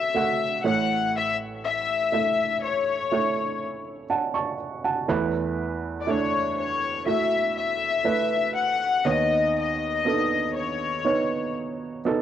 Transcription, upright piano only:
0.00 0.60 F#1 medium
0.00 0.60 F#2 medium
0.00 0.15 A3 medium
0.00 0.15 F#4 medium
0.00 0.66 E5 medium
0.15 0.63 A3 medium
0.15 0.65 F#4 medium
0.15 0.65 F#5 medium
0.64 4.55 A1 soft
0.64 4.55 A2 soft
0.64 2.05 A3 medium
0.64 2.05 E4 medium
0.64 2.06 C#5 medium
2.12 3.06 A3 medium
2.12 3.06 E4 soft
2.12 3.06 E5 medium
3.12 4.05 A3 medium
3.12 4.05 E4 medium
3.12 4.05 C#5 medium
4.10 4.33 F#5 soft
4.10 4.33 A5 medium
4.34 4.81 A5 soft
4.34 4.81 C#6 medium
4.84 5.31 F#5 soft
4.84 5.31 A5 medium
5.08 9.02 E2 medium
5.08 9.01 E3 medium
5.08 6.02 A3 medium
5.08 6.02 E4 medium
5.08 6.02 B4 medium
6.07 7.01 A3 medium
6.07 7.02 D4 medium
6.07 7.01 E4 medium
7.06 8.00 A3 medium
7.06 8.01 E4 soft
7.06 8.01 F#4 medium
8.04 9.00 A3 medium
8.04 9.00 E4 medium
8.04 9.00 B4 medium
9.05 12.22 D#2 soft
9.05 12.22 D#3 soft
9.05 10.00 B3 medium
9.05 10.00 D#4 medium
9.05 10.01 C#5 medium
10.05 11.00 B3 medium
10.05 10.12 D4 soft
10.05 11.00 A4 medium
10.12 11.03 D#4 soft
11.05 12.00 B3 medium
11.05 12.00 D#4 medium
11.05 12.01 C#5 medium
12.05 12.22 B3 medium
12.05 12.22 D#4 medium
12.05 12.22 A4 medium

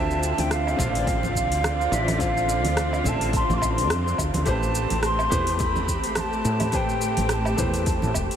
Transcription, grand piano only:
0.00 0.75 D3 loud
0.00 0.75 C4 medium
0.00 0.76 F4 medium
0.00 0.76 E5 loud
0.76 2.16 D3 loud
0.76 2.17 C4 medium
0.76 2.17 F4 medium
0.76 2.18 F5 loud
2.18 3.01 D3 medium
2.18 3.02 C4 medium
2.18 3.02 F4 medium
2.18 3.03 F5 medium
3.04 4.43 D3 medium
3.04 4.44 C4 medium
3.04 4.44 F4 medium
3.04 4.45 E5 medium
4.45 5.28 A3 medium
4.45 5.28 G4 medium
4.45 5.29 B4 medium
4.45 5.29 C5 loud
5.30 6.69 A3 loud
5.30 6.70 G4 medium
5.30 6.70 B4 medium
5.30 6.71 C5 loud
6.72 7.54 A3 medium
6.72 7.55 G4 medium
6.72 7.55 B4 medium
6.72 7.56 C5 loud
7.56 8.36 A3 medium
7.56 8.36 G4 medium
7.56 8.36 B4 medium
7.56 8.36 C5 medium

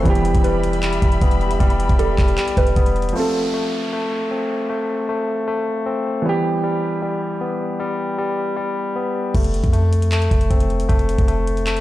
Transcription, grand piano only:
0.02 3.10 E3 medium
0.02 3.11 B3 medium
0.10 3.13 G4 medium
3.12 6.19 F3 medium
3.12 6.21 C4 medium
3.19 6.23 A4 medium
6.22 9.29 E3 medium
6.22 9.31 B3 medium
6.29 9.33 G4 medium

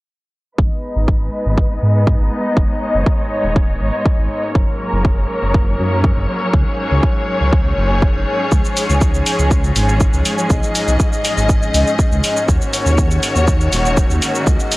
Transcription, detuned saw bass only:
0.58 0.69 G#1 medium
0.96 1.29 G#1 medium
1.46 1.79 G#1 medium
1.82 2.16 G#2 medium
2.20 2.30 G#1 medium
2.57 2.67 F#1 medium
2.94 3.04 F#1 medium
3.44 3.77 D#1 medium
3.81 3.91 G#1 medium
4.18 4.28 G#1 medium
4.55 4.65 F#1 medium
4.93 5.26 F#1 medium
5.42 5.75 F#1 medium
5.79 6.13 F#2 medium
6.17 6.26 F#1 medium
6.54 6.64 C#2 medium
6.91 7.01 C#2 medium
7.41 7.74 C#2 medium
7.77 8.11 F#1 medium
8.15 8.25 F#1 medium
8.52 8.62 C#2 loud
8.90 9.22 C#2 medium
9.39 9.72 C#2 medium
9.76 10.09 G#1 medium
10.14 10.23 C#2 loud
10.50 10.60 B1 medium
10.88 10.97 B1 medium
11.37 11.70 G#1 medium
11.74 11.84 C#2 loud
12.12 12.21 C#2 loud
12.48 12.59 D#2 loud
12.86 13.19 D#2 medium
13.36 13.69 D#2 medium
13.72 14.06 D#1 medium
14.10 14.20 D#2 medium
14.47 14.57 C#2 medium

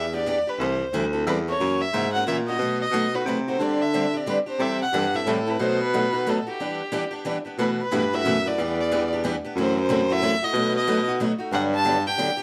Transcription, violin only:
0.00 0.12 E5 medium
0.16 0.51 D5 medium
0.49 0.65 B4 medium
0.63 0.95 C5 medium
1.28 1.37 B4 medium
1.49 1.83 C#5 medium
1.81 2.13 E5 medium
2.13 2.26 F#5 medium
2.28 2.37 E5 medium
2.47 2.78 D#5 medium
2.81 3.16 D#5 medium
3.15 3.27 B4 medium
3.28 3.37 B4 medium
3.49 3.64 C5 medium
3.62 3.83 D5 medium
3.82 4.18 E5 medium
4.17 4.28 D5 medium
4.29 4.38 B4 medium
4.49 4.63 C5 medium
4.62 4.81 E5 medium
4.82 5.17 F#5 medium
5.15 5.30 E5 medium
5.29 5.51 A4 medium
5.50 5.63 B4 medium
5.61 5.81 C5 medium
5.83 6.31 B4 medium
6.30 6.48 A4 medium
6.49 7.23 G4 medium
7.61 7.70 B4 medium
7.81 8.16 B4 medium
8.15 8.49 E5 loud
8.47 8.79 D5 medium
8.80 9.10 D5 medium
9.61 9.78 C5 medium
9.80 10.14 C5 medium
10.12 10.45 E5 loud
10.44 10.76 D#5 loud
10.77 11.06 D#5 medium
11.54 11.63 F#5 loud
11.74 12.04 A5 loud
12.07 12.43 G5 loud

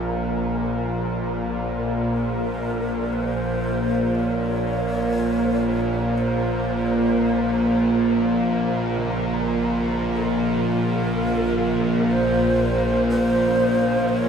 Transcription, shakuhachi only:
2.14 3.15 A#4 medium
3.13 3.24 B4 loud
3.24 4.17 C5 loud
4.15 4.20 D#5 loud
4.19 6.19 C#5 loud
6.17 9.15 C5 medium
10.14 10.25 A4 loud
10.25 12.13 A#4 loud
12.12 13.09 C5 loud
13.09 14.10 C5 loud
14.09 14.29 C#5 loud

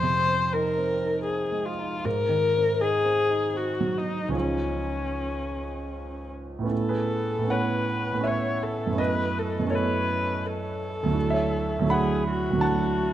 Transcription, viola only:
0.00 0.54 C5 medium
0.52 1.23 A#4 medium
1.24 1.67 G#4 medium
1.65 2.06 F4 medium
2.05 2.83 A#4 medium
2.81 3.58 G#4 medium
3.56 3.99 F#4 medium
3.97 4.35 D#4 medium
4.37 6.30 C#4 medium
6.72 7.52 A4 medium
7.50 8.28 B4 medium
8.26 8.64 C#5 soft
8.63 9.01 A4 soft
9.00 9.40 B4 medium
9.39 9.76 A4 medium
9.74 10.47 B4 medium
10.46 11.95 A4 medium
11.94 12.28 G#4 medium
12.29 13.13 F#4 medium

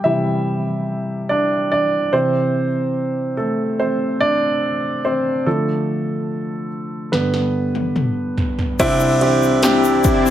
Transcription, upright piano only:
0.00 0.05 G3 medium
0.00 2.15 G4 medium
0.00 1.33 E5 medium
0.00 2.14 G5 medium
0.04 2.09 C3 soft
0.04 2.09 E3 soft
0.04 2.09 G3 soft
0.04 1.26 E4 medium
1.29 1.69 D4 medium
1.29 1.70 D5 medium
1.72 2.11 D4 soft
1.72 2.14 D5 medium
2.12 2.68 C3 soft
2.12 2.68 E3 soft
2.12 3.34 C4 medium
2.12 3.41 C5 medium
3.37 3.76 A3 soft
3.37 3.80 A4 medium
3.80 4.18 C4 medium
3.80 4.22 C5 medium
4.20 5.00 D4 medium
4.20 5.00 D5 medium
5.05 5.44 C4 medium
5.05 5.47 C5 medium
5.46 6.67 D3 soft
5.46 6.67 F3 soft
5.46 7.09 A3 medium
5.46 7.18 A4 medium
7.12 8.75 G2 soft
7.12 8.75 D3 soft
7.12 8.34 B3 soft
7.12 8.33 B4 medium
8.80 10.30 C2 medium
8.80 10.30 C3 medium
8.80 9.19 C4 loud
8.80 9.19 D4 medium
8.80 9.19 E4 loud
9.21 9.61 C4 medium
9.21 9.61 D4 medium
9.21 9.61 G4 medium
9.63 10.30 C4 medium
9.63 10.30 D4 medium
9.63 10.30 G4 medium

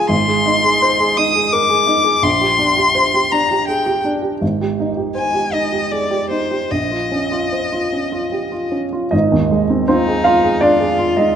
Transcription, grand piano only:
0.00 0.13 F4 soft
0.00 0.13 G#4 soft
0.00 0.13 A#4 soft
0.00 0.13 C5 soft
0.09 2.18 G#1 medium
0.28 0.57 G#4 soft
0.46 0.75 D#4 medium
0.64 0.93 G#4 soft
0.82 1.11 C5 medium
1.00 1.28 G#4 soft
1.17 1.46 D#4 soft
1.35 1.63 G#4 soft
1.53 1.70 A#4 soft
1.70 1.98 G#4 soft
1.87 2.16 D#4 soft
2.04 2.23 G#4 soft
2.23 4.37 A#1 soft
2.41 2.70 G4 soft
2.58 2.88 D4 soft
2.77 3.06 G4 soft
2.95 3.24 C5 soft
3.14 3.43 G4 soft
3.32 3.61 D4 soft
3.51 3.79 G4 soft
3.69 3.87 G#4 soft
3.86 4.16 G4 soft
4.04 4.34 D4 soft
4.22 4.41 G4 soft
4.41 6.66 G#1 soft
4.61 4.90 G4 soft
4.80 5.09 D#4 soft
4.97 5.26 G4 soft
5.15 5.45 C5 soft
5.34 5.64 G4 soft
5.53 5.83 D#4 soft
5.72 6.03 G4 soft
5.92 6.11 G#4 soft
6.11 6.42 G4 soft
6.31 6.62 D#4 soft
6.51 6.70 G4 soft
6.71 9.10 A#1 soft
6.91 7.23 F4 soft
7.12 7.44 C#4 soft
7.31 7.64 F4 soft
7.52 7.84 C5 soft
7.72 8.04 F4 soft
7.92 8.24 C#4 soft
8.12 8.44 F4 soft
8.32 8.52 G4 soft
8.52 8.85 F4 soft
8.71 9.05 C#4 soft
8.93 9.13 F4 soft
9.11 11.31 G#1 medium
9.11 9.85 D#4 soft
9.11 9.89 D#5 medium
9.32 9.63 D#2 soft
9.51 9.82 G#3 soft
9.70 9.87 C4 soft
9.88 10.23 C4 medium
9.88 10.18 F4 soft
9.88 10.25 C5 medium
10.08 10.37 G#4 soft
10.24 10.60 F4 medium
10.24 10.62 F5 medium
10.44 10.73 G#4 soft
10.61 11.13 D4 medium
10.61 10.91 F4 soft
10.61 11.17 D5 medium
10.80 11.10 G#4 soft
10.99 11.28 F4 soft
11.17 11.36 G#3 soft
11.17 11.35 D#4 soft
11.17 11.35 D#5 medium

